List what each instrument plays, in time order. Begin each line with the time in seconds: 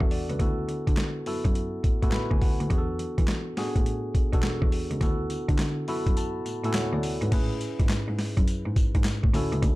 Already playing: tine electric piano B3 D4 F#4 A4 F#5
0.00 cello E2, tine electric piano E5, kick
0.11 tine electric piano D5, open hi-hat
0.29 cello C#2, tine electric piano B4, closed hi-hat
0.40 cello D2, tine electric piano B3 E4 F#4 A4, kick, closed hi-hat
0.68 cello D3, closed hi-hat
0.87 cello D3, kick, closed hi-hat
0.97 snare, clap, closed hi-hat
1.26 cello F#2, tine electric piano B3 E4 F#4 A4, open hi-hat
1.45 cello F#2, kick, closed hi-hat
1.55 closed hi-hat
1.84 cello A2, kick, closed hi-hat
2.02 cello A2, tine electric piano B3 E4 F#4 A4, kick, closed hi-hat
2.10 cello D2, tine electric piano B4 B5, snare, clap, closed hi-hat
2.31 cello D2, tine electric piano G#5, kick
2.42 tine electric piano F#5, kick, open hi-hat
2.60 cello D2, closed hi-hat
2.70 cello E2, tine electric piano B3 D4 F#4 G#4, kick, closed hi-hat
2.78 tine electric piano A4
2.99 cello E3, closed hi-hat
3.18 cello E3, kick, closed hi-hat
3.28 snare, clap, closed hi-hat
3.57 cello A2, tine electric piano B3 D4 F#4 G#4, snare, open hi-hat
3.76 cello A2, kick, closed hi-hat
3.86 closed hi-hat
4.15 cello B2, kick, closed hi-hat
4.33 cello B2, tine electric piano B3 D4 F#4 A4, kick, closed hi-hat
4.43 cello E2, snare, clap, closed hi-hat
4.62 cello E2, kick
4.72 open hi-hat
4.91 cello C#2, closed hi-hat
5.01 cello D2, tine electric piano B3 E4 F#4 A4, kick, closed hi-hat, tambourine
5.30 cello D3, closed hi-hat, tambourine
5.49 cello D3, kick, closed hi-hat
5.58 snare, clap, closed hi-hat, tambourine
5.88 cello F#2, tine electric piano B3 E4 F#4 A4 B5, open hi-hat
6.06 cello F#2, kick, closed hi-hat
6.17 tine electric piano A5, closed hi-hat, tambourine
6.46 cello A2, closed hi-hat, tambourine
6.64 cello A2, tine electric piano B3 E4 F#4 A4 G#5, closed hi-hat
6.74 cello D2, tine electric piano C#5 F#5, snare, clap, closed hi-hat, tambourine
6.93 cello D2, tine electric piano D5
7.03 open hi-hat, tambourine
7.22 cello G#2, tine electric piano B4, closed hi-hat
7.32 cello A2, tine electric piano C#4 E4 G#4 B4, kick, closed hi-hat, crash, tambourine
7.61 closed hi-hat, tambourine
7.80 cello G#2, kick, closed hi-hat
7.89 cello G#2, snare, clap, closed hi-hat, tambourine
8.08 cello G#2
8.19 snare, open hi-hat
8.37 cello F#2, kick, closed hi-hat
8.47 closed hi-hat, tambourine
8.66 cello G#2
8.76 kick, closed hi-hat, tambourine
8.95 cello G#2, kick, closed hi-hat
9.04 snare, clap, closed hi-hat, tambourine
9.24 cello A2, kick
9.34 cello D2, tine electric piano C#4 E4 F#4 A4, open hi-hat, tambourine
9.52 cello C#2, closed hi-hat
9.63 cello D2, kick, closed hi-hat, tambourine